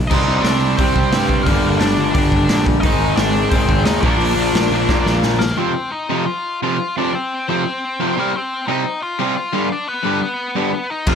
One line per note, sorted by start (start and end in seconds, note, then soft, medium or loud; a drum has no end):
0.07 0.24 C2 loud
0.07 0.77 C3 medium
0.07 0.42 D#4 medium
0.07 0.42 D#5 loud
0.07 kick loud
0.07 crash loud
0.12 0.80 G3 loud
0.12 0.79 C4 loud
0.28 0.42 C2 medium
0.42 0.72 C2 loud
0.42 0.76 D4 medium
0.42 0.77 D5 loud
0.42 snare loud
0.42 open hi-hat medium
0.77 0.92 C2 loud
0.77 1.45 C3 medium
0.77 1.46 G3 medium
0.77 1.43 C4 medium
0.77 1.48 C5 medium
0.77 kick loud
0.77 open hi-hat medium
0.82 1.47 C4 loud
0.96 1.09 C2 medium
0.96 kick medium
1.12 1.40 G2 medium
1.12 snare loud
1.12 open hi-hat medium
1.29 kick medium
1.43 1.60 G1 medium
1.43 2.12 G2 loud
1.43 1.77 A#3 medium
1.43 1.80 A#4 medium
1.43 kick loud
1.43 open hi-hat medium
1.48 2.14 D3 loud
1.48 2.15 G3 loud
1.65 1.78 G1 medium
1.80 1.95 G1 medium
1.80 2.13 D4 medium
1.80 2.15 D5 loud
1.80 snare loud
1.80 open hi-hat medium
1.98 2.11 G1 medium
2.14 2.28 G1 loud
2.14 2.81 G2 medium
2.14 2.83 D3 medium
2.14 2.83 G3 medium
2.14 2.63 D5 loud
2.14 kick loud
2.14 open hi-hat medium
2.18 2.64 D4 medium
2.32 2.46 G1 loud
2.32 kick medium
2.49 2.77 A#1 medium
2.49 snare loud
2.49 open hi-hat medium
2.66 kick medium
2.81 2.97 G#1 loud
2.81 3.49 G#2 medium
2.81 3.15 D#4 medium
2.81 3.16 D#5 loud
2.81 kick loud
2.81 open hi-hat medium
2.85 3.52 D#3 loud
2.85 3.52 G#3 loud
3.00 3.14 G#1 medium
3.16 3.45 G#1 loud
3.16 3.50 D4 medium
3.16 3.50 D5 medium
3.16 snare loud
3.16 open hi-hat medium
3.50 3.66 G#1 loud
3.50 4.01 G#2 medium
3.50 4.01 D#3 medium
3.50 3.83 C4 medium
3.50 3.85 C5 loud
3.50 kick loud
3.50 open hi-hat medium
3.55 4.04 G#3 medium
3.69 3.83 G#1 medium
3.69 kick medium
3.85 3.99 D#2 medium
3.85 4.01 D#4 medium
3.85 4.01 D#5 medium
3.85 snare loud
3.85 open hi-hat medium
4.01 4.17 A#1 loud
4.01 4.70 A#2 medium
4.01 4.71 F3 loud
4.01 5.19 D4 medium
4.01 5.18 D5 medium
4.01 kick loud
4.06 4.69 A#3 loud
4.18 4.33 A#1 loud
4.18 open hi-hat medium
4.36 4.50 A#1 medium
4.53 4.68 A#1 loud
4.53 snare loud
4.53 open hi-hat medium
4.71 4.85 A#1 medium
4.71 5.40 F3 medium
4.71 5.39 A#3 medium
4.75 5.41 A#2 medium
4.89 5.03 A#1 medium
4.89 kick loud
4.89 snare medium
5.06 5.20 A#1 medium
5.06 snare medium
5.23 5.52 A#1 medium
5.23 snare medium
5.39 5.56 A#3 medium
5.39 5.57 A#4 medium
5.39 snare loud
5.57 5.71 F2 medium
5.57 5.72 C3 medium
5.57 5.72 F3 loud
5.57 5.90 C4 medium
5.57 5.93 C5 medium
5.92 6.24 D#4 medium
5.92 6.26 D#5 medium
6.10 6.23 F2 loud
6.10 6.24 C3 medium
6.10 6.24 F3 medium
6.26 6.59 F4 medium
6.26 6.59 F5 medium
6.63 6.76 F2 medium
6.63 6.76 C3 loud
6.63 6.77 F3 loud
6.63 6.95 F4 medium
6.63 6.98 F5 medium
6.98 7.11 F2 medium
6.98 7.12 C3 medium
6.98 7.12 F3 loud
6.98 7.13 D4 medium
6.98 7.15 D5 loud
7.15 7.46 C4 medium
7.15 7.48 C5 medium
7.49 7.62 F2 medium
7.49 7.62 C3 loud
7.49 7.62 F3 loud
7.49 8.14 C4 medium
7.49 8.19 C5 medium
8.00 8.14 F2 medium
8.00 8.14 C3 loud
8.00 8.14 F3 medium
8.18 8.31 C3 medium
8.18 8.31 G3 loud
8.18 8.34 A#3 medium
8.18 8.32 C4 loud
8.18 8.36 A#4 medium
8.36 8.67 C4 medium
8.36 8.70 C5 medium
8.67 8.82 C3 medium
8.67 8.83 G3 medium
8.67 8.83 C4 loud
8.67 8.99 D#4 medium
8.67 9.00 D#5 medium
9.03 9.34 F4 medium
9.03 9.36 F5 loud
9.19 9.33 C3 medium
9.19 9.33 G3 loud
9.19 9.34 C4 loud
9.37 9.69 F4 medium
9.37 9.72 F5 medium
9.53 9.67 G2 medium
9.53 9.67 D3 medium
9.53 9.67 G3 loud
9.72 9.87 D4 medium
9.72 9.87 D5 medium
9.89 10.20 B3 medium
9.89 10.21 B4 medium
10.03 10.18 G2 medium
10.03 10.18 D3 loud
10.03 10.19 G3 loud
10.22 10.86 B3 medium
10.22 10.92 B4 medium
10.56 10.70 G2 medium
10.56 10.70 D3 loud
10.56 10.70 G3 loud
10.90 11.06 D#4 medium
10.90 11.09 D#5 medium
11.07 11.15 F1 medium
11.07 11.15 F2 medium
11.07 11.15 C3 loud
11.07 11.15 F3 loud
11.07 11.15 F4 medium
11.07 11.15 F5 loud
11.07 kick loud
11.07 crash medium